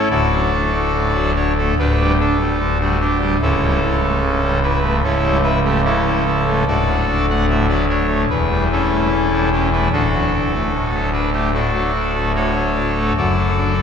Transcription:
0.11 D1 D2 F#4 A4 D5
0.32 F#3
0.54 D4
0.74 A3
0.95 A2
1.15 F#3
1.35 D4 C#5
1.57 A3 A4
1.78 D1 D2 D4 G4 B4
2.00 G3
2.20 D4 A4
2.40 G3
2.59 D3
2.80 G3 F#4
3.00 D4 G4
3.21 G3
3.41 C#1 C#2 C#4 E4 A4
3.62 G3
3.81 E4
4.02 A3
4.21 C#3
4.42 G3
4.63 E4 B4
4.83 A3
5.03 C#1 C#2 C#4 E4 A4
5.23 G3
5.42 E4 B4
5.64 A3 G4
5.84 C#3 C#4 E4 A4
6.06 G3
6.26 E4
6.47 A3
6.67 D1 D2 F#4 A4 D5
6.88 F#3
7.08 D4
7.29 A3 F#5
7.49 A2 E5
7.69 F#3 D5
7.89 D4 C#5
8.08 A3
8.29 E1 E2 B4
8.51 G3
8.72 C#4 E4 A4
8.92 A3
9.12 E3
9.32 G3
9.52 C#4 G4
9.72 A3 B4
9.92 D1 D2 D4 F#4 A4
10.14 F#3
10.34 D4
10.53 A3
10.73 A2
10.93 F#3
11.12 D4 B4
11.32 A3 G4
11.53 A2 D4 F#4 A4
11.74 F#3
11.94 D4
12.14 A3
12.35 A2 F#4 A4 C#5
12.54 F#3
12.76 D4
12.98 A3
13.17 F#1 F#2 F#4 A4 D5
13.36 F#3
13.57 D4
13.77 A3

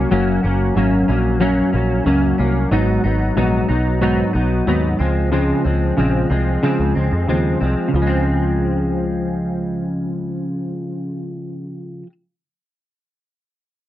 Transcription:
Already playing: F#3 A#3 C#4
0.11 F#1 F#2 F#3 A#3 C#4
0.43 F#1 F#3 A#3 C#4
0.76 G#1 F#2 F#3 A#3 C#4
1.08 A#1 F#3 A#3 C#4
1.40 F#2 F#3 A#3 C#4
1.73 A#1 F#3 A#3 C#4
2.05 C#2 F#2 F#3 A#3 C#4
2.38 C2 F#3 A#3 C#4
2.71 G#1 G#2 F#3 B3 D#4
3.04 G#1 F#3 B3 D#4
3.36 A#1 G#2 F#3 B3 D#4
3.69 B1 F#3 B3 D#4
4.01 G#2 F#3 B3 D#4
4.33 B1 F#3 B3 D#4
4.66 D#2 G#2 F#3 B3 D#4
4.99 C#2 F3 G#3 C4
5.32 C#3 F3 G#3 C4
5.64 C#2 F3 G#3 C4
5.97 A#1 C#3 F3 G#3 C4
6.30 C2 F3 G#3 C4
6.63 C#3 F3 G#3 C4
6.80 C#2
6.95 C#2 F3 G#3 C4
7.12 F2
7.28 D#2 C#3 F3 G#3 C4
7.61 C2 F3 G#3 C4
7.88 C#3
7.94 C#2 F3
8.02 G#3
8.07 C4

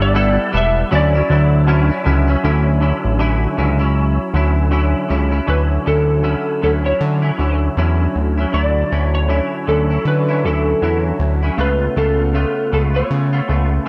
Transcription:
Already playing: G1 G3 B3 E4 A4
0.02 D5
0.14 G3 B3 E4 A4
0.52 E1 G3 B3 E4 A4
0.57 E5
0.91 D2 D3 F#3 C#4 E4
0.95 D5
1.14 F#3 C#4 E4
1.29 D2 D3 F#3 E4
1.67 D3 F#3 C#4 E4
1.89 F#3 C#4 E4
2.04 C#2 D3 F#3 C#4 E4
2.27 F#3 C#4 E4
2.43 D2 D3 F#3 C#4 E4
2.80 D3 F#3 C#4 E4
3.04 A1
3.19 D3 F#3 C#4 E4
3.57 C#2 D3 F#3 C#4 E4
3.79 F#3 C#4 E4
4.34 D2 D3 F#3 C#4 E4
4.71 D3 F#3 C#4 E4
5.08 C#2 D3 F#3 C#4 E4
5.31 F#3 C#4 E4
5.46 D2 D3 F#3 C#4 E4 B4
5.85 D2 D3 F#3 C#4 E4 A4
6.23 D3 F#3 C#4 E4
6.61 D2 D3 F#3 C#4 E4 A4
6.84 F#3 C#4 E4 C#5
7.01 D3
7.22 F#3 C#4 E4
7.38 D2 D3 F#3 C#4 E4
7.77 E2 D3 F#3 C#4 E4
8.15 D2
8.38 F#3 C#4 E4
8.52 D2 D3 F#3 E4 D5
8.91 D2 D3 F#3 C#4 E4
9.15 C#5
9.28 D3 F#3 C#4 E4
9.67 D2 D3 F#3 C#4 E4 A4
9.90 F#3 C#4 E4
10.05 D3 B4
10.29 F#3 C#4 E4
10.44 D2 D3 F#3 C#4 E4 A4
10.82 E2 D3 F#3 C#4 E4
11.19 D2
11.43 F#3 C#4 E4
11.57 C#2 C#3 A3 B3 F4 B4
11.96 C#2 C#3 A3 B3 F4 A4
12.34 C#3 A3 B3 F4
12.72 C#2 C#3 A3 B3 F4 A4
12.94 A3 B3 F4 C#5
13.11 C#3
13.33 A3 B3 F4
13.48 C#2 C#3 A3 B3 F4

